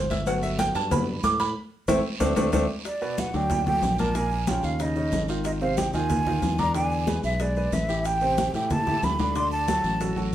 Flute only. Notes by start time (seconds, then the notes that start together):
2.86 D5
3.19 F#5
3.36 G5
3.67 G5
4.00 A5
4.15 G#5
4.48 G5
4.65 F5
4.82 D#5
5.46 D#5
5.61 F5
5.77 G5
5.94 G#5
6.59 A#5
6.75 G#5
7.24 E5
7.41 D5
7.73 E5
8.06 G5
8.55 G5
8.72 A5
9.04 B5
9.37 C6
9.52 A5